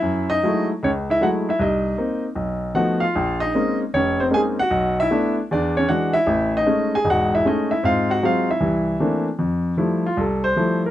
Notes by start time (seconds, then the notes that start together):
Already playing: E4 E5
0.02 F#2
0.30 D#4 D#5
0.43 F#3 G#3 A3 E4
0.83 C#2 C#4 C#5
1.10 E4 E5
1.21 F#3 G#3 A3 E4 F#4 F#5
1.49 E4 E5
1.59 C2 D#4 D#5
1.98 A#3 C4 D#4
2.35 B1
2.74 F3 A3 B3 D#4 F#4 F#5
3.00 F4 F5
3.16 A#1
3.40 D#4 D#5
3.55 G#3 A#3 C4 C#4 D#4
3.94 F1 C#4 C#5
4.20 C4 C5
4.31 G#3 A#3 C4 C#4 D#4 G#5
4.36 G#4
4.59 F#4 F#5
4.71 B1
5.00 E4 E5
5.11 A3 B3 D4
5.51 E2 D4 D5
5.77 C#4 C#5
5.89 E3 G#3 D4 F#4 F#5
6.13 E4 E5
6.27 A1
6.57 D#4 D#5
6.66 G#3 A3 C#4
6.95 G#4 G#5
7.05 E1 G#2
7.10 F#4 F#5
7.35 E4 E5
7.45 G#3 A3 C#4 D#4 D#5
7.71 E4 E5
7.83 G#2 C4 F4 F5
8.10 F#4 F#5
8.23 F#3 G#3 C4 F4 F5
8.50 E4 E5
8.60 C2 E3
9.00 E3 A3 A#3 C4 D4
9.39 F2
9.77 F3 G3 A3 E4
10.06 F4
10.17 C2 A4
10.44 C5
10.56 F3 G3 A3 E4
10.86 A#4